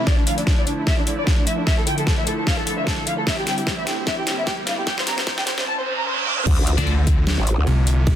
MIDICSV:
0, 0, Header, 1, 10, 480
1, 0, Start_track
1, 0, Key_signature, -1, "minor"
1, 0, Tempo, 400000
1, 82, Time_signature, 4, 2, 24, 8
1, 9786, End_track
2, 0, Start_track
2, 0, Title_t, "Violin section"
2, 0, Program_c, 0, 48
2, 82, Note_on_c, 0, 74, 92
2, 164, Note_off_c, 0, 74, 0
2, 214, Note_on_c, 0, 62, 59
2, 281, Note_off_c, 0, 62, 0
2, 322, Note_on_c, 0, 77, 89
2, 404, Note_off_c, 0, 77, 0
2, 454, Note_on_c, 0, 62, 62
2, 521, Note_off_c, 0, 62, 0
2, 562, Note_on_c, 0, 62, 61
2, 644, Note_off_c, 0, 62, 0
2, 694, Note_on_c, 0, 74, 90
2, 762, Note_off_c, 0, 74, 0
2, 802, Note_on_c, 0, 62, 59
2, 884, Note_off_c, 0, 62, 0
2, 934, Note_on_c, 0, 62, 62
2, 1002, Note_off_c, 0, 62, 0
2, 1043, Note_on_c, 0, 76, 91
2, 1124, Note_off_c, 0, 76, 0
2, 1174, Note_on_c, 0, 62, 62
2, 1242, Note_off_c, 0, 62, 0
2, 1282, Note_on_c, 0, 62, 63
2, 1364, Note_off_c, 0, 62, 0
2, 1414, Note_on_c, 0, 74, 94
2, 1481, Note_off_c, 0, 74, 0
2, 1522, Note_on_c, 0, 62, 63
2, 1604, Note_off_c, 0, 62, 0
2, 1654, Note_on_c, 0, 62, 62
2, 1721, Note_off_c, 0, 62, 0
2, 1762, Note_on_c, 0, 76, 87
2, 1844, Note_off_c, 0, 76, 0
2, 1894, Note_on_c, 0, 62, 61
2, 1961, Note_off_c, 0, 62, 0
2, 2003, Note_on_c, 0, 76, 96
2, 2084, Note_off_c, 0, 76, 0
2, 2134, Note_on_c, 0, 69, 62
2, 2201, Note_off_c, 0, 69, 0
2, 2242, Note_on_c, 0, 79, 92
2, 2324, Note_off_c, 0, 79, 0
2, 2373, Note_on_c, 0, 69, 62
2, 2441, Note_off_c, 0, 69, 0
2, 2482, Note_on_c, 0, 69, 62
2, 2564, Note_off_c, 0, 69, 0
2, 2614, Note_on_c, 0, 76, 93
2, 2681, Note_off_c, 0, 76, 0
2, 2722, Note_on_c, 0, 69, 61
2, 2804, Note_off_c, 0, 69, 0
2, 2854, Note_on_c, 0, 69, 62
2, 2921, Note_off_c, 0, 69, 0
2, 2962, Note_on_c, 0, 77, 91
2, 3044, Note_off_c, 0, 77, 0
2, 3094, Note_on_c, 0, 69, 64
2, 3161, Note_off_c, 0, 69, 0
2, 3202, Note_on_c, 0, 69, 62
2, 3284, Note_off_c, 0, 69, 0
2, 3333, Note_on_c, 0, 76, 90
2, 3401, Note_off_c, 0, 76, 0
2, 3441, Note_on_c, 0, 69, 65
2, 3524, Note_off_c, 0, 69, 0
2, 3572, Note_on_c, 0, 69, 62
2, 3640, Note_off_c, 0, 69, 0
2, 3681, Note_on_c, 0, 77, 88
2, 3764, Note_off_c, 0, 77, 0
2, 3813, Note_on_c, 0, 69, 62
2, 3881, Note_off_c, 0, 69, 0
2, 3921, Note_on_c, 0, 76, 96
2, 4004, Note_off_c, 0, 76, 0
2, 4053, Note_on_c, 0, 67, 64
2, 4121, Note_off_c, 0, 67, 0
2, 4161, Note_on_c, 0, 79, 94
2, 4244, Note_off_c, 0, 79, 0
2, 4293, Note_on_c, 0, 67, 63
2, 4361, Note_off_c, 0, 67, 0
2, 4402, Note_on_c, 0, 67, 65
2, 4484, Note_off_c, 0, 67, 0
2, 4534, Note_on_c, 0, 76, 92
2, 4601, Note_off_c, 0, 76, 0
2, 4642, Note_on_c, 0, 67, 62
2, 4724, Note_off_c, 0, 67, 0
2, 4774, Note_on_c, 0, 67, 62
2, 4841, Note_off_c, 0, 67, 0
2, 4882, Note_on_c, 0, 76, 91
2, 4964, Note_off_c, 0, 76, 0
2, 5014, Note_on_c, 0, 67, 65
2, 5082, Note_off_c, 0, 67, 0
2, 5123, Note_on_c, 0, 67, 65
2, 5205, Note_off_c, 0, 67, 0
2, 5255, Note_on_c, 0, 76, 95
2, 5322, Note_off_c, 0, 76, 0
2, 5363, Note_on_c, 0, 67, 65
2, 5445, Note_off_c, 0, 67, 0
2, 5495, Note_on_c, 0, 67, 62
2, 5562, Note_off_c, 0, 67, 0
2, 5603, Note_on_c, 0, 77, 90
2, 5685, Note_off_c, 0, 77, 0
2, 5735, Note_on_c, 0, 67, 62
2, 5802, Note_off_c, 0, 67, 0
2, 5843, Note_on_c, 0, 79, 100
2, 5925, Note_off_c, 0, 79, 0
2, 5975, Note_on_c, 0, 72, 61
2, 6042, Note_off_c, 0, 72, 0
2, 6083, Note_on_c, 0, 82, 96
2, 6165, Note_off_c, 0, 82, 0
2, 6216, Note_on_c, 0, 72, 65
2, 6282, Note_off_c, 0, 72, 0
2, 6324, Note_on_c, 0, 72, 64
2, 6405, Note_off_c, 0, 72, 0
2, 6455, Note_on_c, 0, 79, 92
2, 6522, Note_off_c, 0, 79, 0
2, 6563, Note_on_c, 0, 72, 65
2, 6645, Note_off_c, 0, 72, 0
2, 6695, Note_on_c, 0, 72, 66
2, 6762, Note_off_c, 0, 72, 0
2, 6803, Note_on_c, 0, 81, 96
2, 6885, Note_off_c, 0, 81, 0
2, 6935, Note_on_c, 0, 72, 66
2, 7002, Note_off_c, 0, 72, 0
2, 7043, Note_on_c, 0, 72, 66
2, 7125, Note_off_c, 0, 72, 0
2, 7175, Note_on_c, 0, 82, 97
2, 7242, Note_off_c, 0, 82, 0
2, 7283, Note_on_c, 0, 72, 67
2, 7365, Note_off_c, 0, 72, 0
2, 7415, Note_on_c, 0, 72, 63
2, 7482, Note_off_c, 0, 72, 0
2, 7523, Note_on_c, 0, 86, 91
2, 7604, Note_off_c, 0, 86, 0
2, 7654, Note_on_c, 0, 72, 66
2, 7722, Note_off_c, 0, 72, 0
2, 9786, End_track
3, 0, Start_track
3, 0, Title_t, "Distorted electric guitar"
3, 0, Program_c, 1, 30
3, 8132, Note_on_c, 1, 74, 97
3, 8137, Note_on_c, 1, 69, 77
3, 8140, Note_on_c, 1, 62, 81
3, 8245, Note_off_c, 1, 62, 0
3, 8245, Note_off_c, 1, 69, 0
3, 8245, Note_off_c, 1, 74, 0
3, 9786, End_track
4, 0, Start_track
4, 0, Title_t, "Supersaw synth"
4, 0, Program_c, 2, 81
4, 83, Note_on_c, 2, 50, 76
4, 83, Note_on_c, 2, 53, 70
4, 83, Note_on_c, 2, 57, 71
4, 83, Note_on_c, 2, 64, 85
4, 3884, Note_off_c, 2, 53, 0
4, 3884, Note_off_c, 2, 57, 0
4, 3884, Note_off_c, 2, 64, 0
4, 3922, Note_on_c, 2, 55, 71
4, 3922, Note_on_c, 2, 60, 70
4, 3922, Note_on_c, 2, 64, 84
4, 6755, Note_off_c, 2, 50, 0
4, 6773, Note_off_c, 2, 55, 0
4, 6773, Note_off_c, 2, 60, 0
4, 6773, Note_off_c, 2, 64, 0
4, 7763, Note_on_c, 2, 50, 79
4, 7763, Note_on_c, 2, 53, 73
4, 7763, Note_on_c, 2, 57, 74
4, 7763, Note_on_c, 2, 65, 86
4, 9786, Note_off_c, 2, 50, 0
4, 9786, Note_off_c, 2, 53, 0
4, 9786, Note_off_c, 2, 57, 0
4, 9786, Note_off_c, 2, 65, 0
4, 9786, End_track
5, 0, Start_track
5, 0, Title_t, "Wobble bass"
5, 0, Program_c, 3, 39
5, 7762, Note_on_c, 3, 38, 96
5, 8113, Note_off_c, 3, 38, 0
5, 8853, Note_on_c, 3, 33, 96
5, 9072, Note_off_c, 3, 33, 0
5, 9094, Note_on_c, 3, 38, 101
5, 9185, Note_off_c, 3, 38, 0
5, 9786, End_track
6, 0, Start_track
6, 0, Title_t, "Detuned saw bass"
6, 0, Program_c, 4, 39
6, 8134, Note_on_c, 4, 38, 98
6, 8833, Note_off_c, 4, 38, 0
6, 9202, Note_on_c, 4, 36, 99
6, 9786, Note_off_c, 4, 36, 0
6, 9786, End_track
7, 0, Start_track
7, 0, Title_t, "Reverse cymbal"
7, 0, Program_c, 5, 119
7, 6802, Note_on_c, 5, 60, 78
7, 7762, Note_off_c, 5, 60, 0
7, 9786, End_track
8, 0, Start_track
8, 0, Title_t, "Riser"
8, 0, Program_c, 6, 103
8, 82, Note_on_c, 6, 60, 76
8, 7762, Note_off_c, 6, 60, 0
8, 9786, End_track
9, 0, Start_track
9, 0, Title_t, "Sub drop"
9, 0, Program_c, 7, 103
9, 7762, Note_on_c, 7, 60, 80
9, 9682, Note_off_c, 7, 60, 0
9, 9786, End_track
10, 0, Start_track
10, 0, Title_t, "Drums"
10, 82, Note_on_c, 9, 36, 96
10, 82, Note_on_c, 9, 38, 46
10, 202, Note_off_c, 9, 36, 0
10, 202, Note_off_c, 9, 38, 0
10, 322, Note_on_c, 9, 42, 80
10, 442, Note_off_c, 9, 42, 0
10, 454, Note_on_c, 9, 42, 36
10, 562, Note_on_c, 9, 36, 95
10, 562, Note_on_c, 9, 38, 50
10, 574, Note_off_c, 9, 42, 0
10, 682, Note_off_c, 9, 36, 0
10, 682, Note_off_c, 9, 38, 0
10, 802, Note_on_c, 9, 42, 79
10, 922, Note_off_c, 9, 42, 0
10, 1042, Note_on_c, 9, 36, 97
10, 1042, Note_on_c, 9, 38, 52
10, 1162, Note_off_c, 9, 36, 0
10, 1162, Note_off_c, 9, 38, 0
10, 1282, Note_on_c, 9, 42, 80
10, 1402, Note_off_c, 9, 42, 0
10, 1522, Note_on_c, 9, 36, 94
10, 1522, Note_on_c, 9, 38, 55
10, 1642, Note_off_c, 9, 36, 0
10, 1642, Note_off_c, 9, 38, 0
10, 1762, Note_on_c, 9, 42, 82
10, 1882, Note_off_c, 9, 42, 0
10, 2002, Note_on_c, 9, 36, 97
10, 2002, Note_on_c, 9, 38, 57
10, 2122, Note_off_c, 9, 36, 0
10, 2122, Note_off_c, 9, 38, 0
10, 2242, Note_on_c, 9, 42, 84
10, 2362, Note_off_c, 9, 42, 0
10, 2374, Note_on_c, 9, 42, 38
10, 2482, Note_on_c, 9, 36, 99
10, 2482, Note_on_c, 9, 38, 61
10, 2494, Note_off_c, 9, 42, 0
10, 2602, Note_off_c, 9, 36, 0
10, 2602, Note_off_c, 9, 38, 0
10, 2722, Note_on_c, 9, 42, 82
10, 2842, Note_off_c, 9, 42, 0
10, 2962, Note_on_c, 9, 36, 97
10, 2962, Note_on_c, 9, 38, 64
10, 3082, Note_off_c, 9, 36, 0
10, 3082, Note_off_c, 9, 38, 0
10, 3202, Note_on_c, 9, 42, 83
10, 3322, Note_off_c, 9, 42, 0
10, 3442, Note_on_c, 9, 36, 95
10, 3442, Note_on_c, 9, 38, 69
10, 3562, Note_off_c, 9, 36, 0
10, 3562, Note_off_c, 9, 38, 0
10, 3681, Note_on_c, 9, 42, 86
10, 3801, Note_off_c, 9, 42, 0
10, 3922, Note_on_c, 9, 36, 101
10, 3922, Note_on_c, 9, 38, 75
10, 4042, Note_off_c, 9, 36, 0
10, 4042, Note_off_c, 9, 38, 0
10, 4162, Note_on_c, 9, 38, 75
10, 4162, Note_on_c, 9, 42, 84
10, 4282, Note_off_c, 9, 38, 0
10, 4282, Note_off_c, 9, 42, 0
10, 4293, Note_on_c, 9, 42, 38
10, 4402, Note_on_c, 9, 36, 101
10, 4402, Note_on_c, 9, 38, 78
10, 4413, Note_off_c, 9, 42, 0
10, 4522, Note_off_c, 9, 36, 0
10, 4522, Note_off_c, 9, 38, 0
10, 4642, Note_on_c, 9, 38, 79
10, 4642, Note_on_c, 9, 42, 80
10, 4762, Note_off_c, 9, 38, 0
10, 4762, Note_off_c, 9, 42, 0
10, 4882, Note_on_c, 9, 36, 96
10, 4882, Note_on_c, 9, 38, 85
10, 5002, Note_off_c, 9, 36, 0
10, 5002, Note_off_c, 9, 38, 0
10, 5122, Note_on_c, 9, 38, 84
10, 5122, Note_on_c, 9, 42, 83
10, 5242, Note_off_c, 9, 38, 0
10, 5242, Note_off_c, 9, 42, 0
10, 5362, Note_on_c, 9, 36, 97
10, 5362, Note_on_c, 9, 38, 88
10, 5482, Note_off_c, 9, 36, 0
10, 5482, Note_off_c, 9, 38, 0
10, 5602, Note_on_c, 9, 38, 91
10, 5602, Note_on_c, 9, 42, 84
10, 5722, Note_off_c, 9, 38, 0
10, 5722, Note_off_c, 9, 42, 0
10, 5842, Note_on_c, 9, 36, 101
10, 5842, Note_on_c, 9, 38, 93
10, 5962, Note_off_c, 9, 36, 0
10, 5962, Note_off_c, 9, 38, 0
10, 5974, Note_on_c, 9, 38, 84
10, 6082, Note_off_c, 9, 38, 0
10, 6082, Note_on_c, 9, 38, 97
10, 6082, Note_on_c, 9, 42, 81
10, 6202, Note_off_c, 9, 38, 0
10, 6202, Note_off_c, 9, 42, 0
10, 6214, Note_on_c, 9, 38, 84
10, 6214, Note_on_c, 9, 42, 36
10, 6322, Note_off_c, 9, 38, 0
10, 6322, Note_on_c, 9, 36, 103
10, 6322, Note_on_c, 9, 38, 99
10, 6334, Note_off_c, 9, 42, 0
10, 6442, Note_off_c, 9, 36, 0
10, 6442, Note_off_c, 9, 38, 0
10, 6453, Note_on_c, 9, 38, 87
10, 6562, Note_off_c, 9, 38, 0
10, 6562, Note_on_c, 9, 38, 99
10, 6562, Note_on_c, 9, 42, 79
10, 6682, Note_off_c, 9, 38, 0
10, 6682, Note_off_c, 9, 42, 0
10, 6693, Note_on_c, 9, 38, 91
10, 6813, Note_off_c, 9, 38, 0
10, 7522, Note_on_c, 9, 48, 64
10, 7642, Note_off_c, 9, 48, 0
10, 7654, Note_on_c, 9, 47, 74
10, 7762, Note_on_c, 9, 36, 125
10, 7762, Note_on_c, 9, 49, 110
10, 7762, Note_on_c, 9, 51, 71
10, 7774, Note_off_c, 9, 47, 0
10, 7882, Note_off_c, 9, 36, 0
10, 7882, Note_off_c, 9, 49, 0
10, 7882, Note_off_c, 9, 51, 0
10, 8002, Note_on_c, 9, 42, 85
10, 8122, Note_off_c, 9, 42, 0
10, 8134, Note_on_c, 9, 42, 38
10, 8243, Note_on_c, 9, 51, 49
10, 8254, Note_off_c, 9, 42, 0
10, 8363, Note_off_c, 9, 51, 0
10, 8482, Note_on_c, 9, 36, 108
10, 8482, Note_on_c, 9, 42, 85
10, 8602, Note_off_c, 9, 36, 0
10, 8602, Note_off_c, 9, 42, 0
10, 8723, Note_on_c, 9, 38, 122
10, 8723, Note_on_c, 9, 51, 68
10, 8843, Note_off_c, 9, 38, 0
10, 8843, Note_off_c, 9, 51, 0
10, 8963, Note_on_c, 9, 42, 85
10, 9083, Note_off_c, 9, 42, 0
10, 9203, Note_on_c, 9, 51, 50
10, 9323, Note_off_c, 9, 51, 0
10, 9442, Note_on_c, 9, 42, 85
10, 9562, Note_off_c, 9, 42, 0
10, 9682, Note_on_c, 9, 36, 126
10, 9682, Note_on_c, 9, 51, 69
10, 9786, Note_off_c, 9, 36, 0
10, 9786, Note_off_c, 9, 51, 0
10, 9786, End_track
0, 0, End_of_file